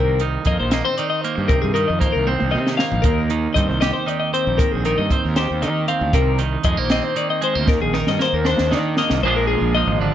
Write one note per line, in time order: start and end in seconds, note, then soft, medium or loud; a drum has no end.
0.00 0.37 C2 medium
0.00 0.20 C3 medium
0.00 0.20 D#3 medium
0.00 0.46 C4 soft
0.00 2.69 G4 medium
0.00 0.20 A#4 medium
0.19 0.98 D#3 medium
0.19 closed hi-hat medium
0.45 0.56 F2 medium
0.45 0.73 A#3 medium
0.45 0.59 D#5 medium
0.45 kick medium
0.45 closed hi-hat medium
0.60 0.81 A#1 medium
0.60 0.72 C5 medium
0.71 0.85 A#3 medium
0.71 0.84 D#5 medium
0.71 snare medium
0.71 closed hi-hat medium
0.85 1.49 C4 soft
0.85 0.97 C5 medium
0.98 1.74 D#3 medium
0.98 1.09 D5 medium
0.98 closed hi-hat medium
1.10 1.21 D#5 medium
1.21 1.52 A#3 medium
1.21 1.48 C5 medium
1.21 closed hi-hat medium
1.38 1.48 G2 medium
1.48 1.75 C3 medium
1.48 1.61 A#4 medium
1.48 kick loud
1.48 closed hi-hat medium
1.62 1.84 G2 medium
1.62 1.73 G#4 medium
1.74 2.50 D#3 medium
1.74 1.87 A#4 medium
1.74 closed hi-hat medium
1.88 2.00 F2 medium
1.88 1.99 D#5 medium
1.99 2.79 A#3 medium
1.99 2.13 C5 medium
1.99 kick medium
1.99 closed hi-hat medium
2.12 2.36 C2 medium
2.12 2.27 A#4 medium
2.27 3.56 C4 medium
2.27 2.53 C5 medium
2.27 high tom soft
2.40 2.55 C2 medium
2.40 high tom soft
2.51 2.74 C3 medium
2.51 3.30 D#3 soft
2.51 2.77 D#5 medium
2.67 snare medium
2.77 3.55 A#3 medium
2.77 3.04 F5 medium
2.77 snare medium
2.92 3.03 A#1 medium
2.92 floor tom medium
3.02 3.46 D#2 medium
3.02 4.58 D#2 medium
3.02 3.29 A#4 medium
3.02 kick medium
3.02 closed hi-hat medium
3.30 4.05 D#3 medium
3.30 closed hi-hat medium
3.54 3.67 G2 medium
3.54 4.33 C4 soft
3.54 3.68 D#5 medium
3.54 kick medium
3.54 closed hi-hat medium
3.68 3.90 C2 medium
3.68 3.80 C5 medium
3.81 5.37 G4 medium
3.81 3.93 D#5 medium
3.81 snare medium
3.81 closed hi-hat medium
3.93 4.08 C5 medium
4.06 4.84 D#3 medium
4.06 4.19 D5 medium
4.06 closed hi-hat soft
4.20 4.33 D#5 medium
4.34 5.12 C4 medium
4.34 4.59 C5 medium
4.34 closed hi-hat medium
4.47 4.57 A#1 medium
4.58 6.14 D#2 medium
4.58 4.72 A#4 medium
4.58 kick loud
4.58 closed hi-hat medium
4.72 4.94 A#1 medium
4.72 4.85 G#4 medium
4.85 5.61 D#3 medium
4.85 4.98 A#4 medium
4.85 closed hi-hat soft
4.98 5.09 G2 medium
4.98 5.11 D#5 medium
5.10 5.87 C4 medium
5.10 5.24 C5 medium
5.10 kick medium
5.10 closed hi-hat medium
5.24 5.46 D#2 medium
5.24 5.36 A#4 medium
5.36 6.68 G4 medium
5.36 5.62 C5 medium
5.36 snare medium
5.36 closed hi-hat medium
5.51 5.65 D#2 medium
5.62 6.38 D#3 medium
5.62 5.84 D#3 medium
5.62 5.88 D#5 medium
5.62 closed hi-hat soft
5.88 6.11 C4 medium
5.88 6.14 F5 medium
5.88 closed hi-hat medium
6.01 6.12 D2 medium
6.13 6.56 C2 medium
6.13 6.40 C3 medium
6.13 6.40 A#4 medium
6.13 kick loud
6.13 closed hi-hat medium
6.39 7.15 D#3 medium
6.39 closed hi-hat medium
6.63 6.76 F2 medium
6.63 6.77 G#3 medium
6.63 6.79 D#5 medium
6.63 kick medium
6.63 closed hi-hat medium
6.77 6.99 A#1 medium
6.77 7.41 A#3 soft
6.77 6.91 C5 medium
6.90 7.65 C4 medium
6.90 7.04 D#5 medium
6.90 snare medium
6.90 closed hi-hat medium
7.04 7.16 C5 medium
7.16 7.93 D#3 soft
7.16 7.30 D5 medium
7.16 closed hi-hat medium
7.30 7.43 D#5 medium
7.42 7.55 G#3 soft
7.42 7.69 C5 medium
7.42 closed hi-hat medium
7.55 7.66 D2 medium
7.55 7.68 A#3 soft
7.66 9.22 D#2 medium
7.66 7.79 D#2 loud
7.66 7.81 A#4 medium
7.66 kick loud
7.66 snare medium
7.81 8.03 A#1 medium
7.81 7.94 G#4 medium
7.93 8.71 D#3 medium
7.93 8.07 A#4 medium
7.93 snare medium
8.07 8.18 G2 medium
8.07 8.21 D#5 medium
8.07 snare medium
8.19 8.97 A#3 medium
8.19 8.34 C5 medium
8.19 snare medium
8.33 8.54 D#2 medium
8.33 8.46 A#4 medium
8.45 9.20 D4 medium
8.45 8.71 C5 medium
8.45 snare medium
8.58 8.74 D#2 medium
8.58 snare medium
8.71 9.23 D#3 medium
8.71 8.93 D#3 medium
8.71 8.97 D5 medium
8.71 snare medium
8.97 9.21 A#3 medium
8.97 9.23 D#5 medium
8.97 snare medium
9.10 9.21 C2 medium
9.10 snare medium
9.23 9.55 A#1 medium
9.23 10.01 A#2 medium
9.23 9.75 F3 medium
9.23 10.14 G#3 medium
9.23 9.36 C5 medium
9.27 10.14 D4 medium
9.27 10.14 F4 medium
9.36 9.47 A#4 medium
9.47 9.74 G#4 medium
9.61 9.83 A#1 medium
9.75 10.14 F3 medium
9.75 9.99 D#5 medium
9.87 10.08 G#1 medium
9.99 10.14 D3 medium
9.99 10.13 D5 medium